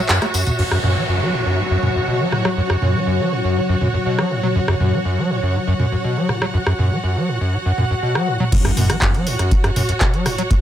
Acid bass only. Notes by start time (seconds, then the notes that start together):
0.09 F#2
0.22 A3
0.34 F#2
0.47 E2
0.59 F#2
0.71 F#2
0.84 F#2
0.96 F#3
1.09 F#2
1.21 F#3
1.33 A2
1.46 F#2
1.58 A2
1.71 F#2
1.83 F#2
1.95 F#2
2.08 B2
2.20 F#3
2.32 A2
2.45 F#3
2.57 F#2
2.70 F#2
2.82 F#2
2.95 F#3
3.07 F#2
3.19 F#3
3.32 A2
3.44 F#2
3.56 A2
3.69 F#2
3.81 F#2
3.94 F#2
4.06 B2
4.19 F#3
4.31 A2
4.43 F#3
4.56 F#2
4.68 F#2
4.80 F#2
4.93 F#3
5.05 F#2
5.18 F#3
5.30 A2
5.43 F#2
5.55 A2
5.67 F#2
5.80 F#2
5.92 F#2
6.04 B2
6.17 F#3
6.29 A2
6.42 F#3
6.54 F#2
6.67 F#2
6.79 F#2
6.91 F#3
7.04 F#2
7.16 F#3
7.28 A2
7.41 F#2
7.53 A2
7.66 F#2
7.78 F#2
7.90 F#2
8.03 B2
8.15 F#3
8.27 A2
8.40 F#3
8.52 F#2
8.65 F#2
8.77 F#2
8.90 F#3
9.02 F#2
9.14 F#3
9.27 A2
9.39 F#2
9.51 A2
9.64 F#2
9.76 F#2
9.89 F#2
10.01 B2
10.14 F#3
10.26 A2
10.38 F#3
10.51 F#2